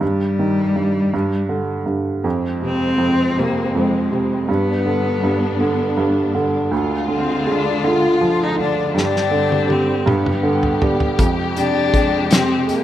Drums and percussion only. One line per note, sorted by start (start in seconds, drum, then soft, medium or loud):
8.98 snare medium
9.16 snare soft
9.52 high tom soft
9.70 high tom medium
10.07 mid tom medium
10.26 mid tom medium
10.63 floor tom medium
10.82 floor tom medium
11.00 floor tom medium
11.19 kick medium
11.19 closed hi-hat medium
11.57 closed hi-hat soft
11.94 kick medium
11.94 closed hi-hat soft
12.31 snare loud
12.31 closed hi-hat medium
12.69 closed hi-hat soft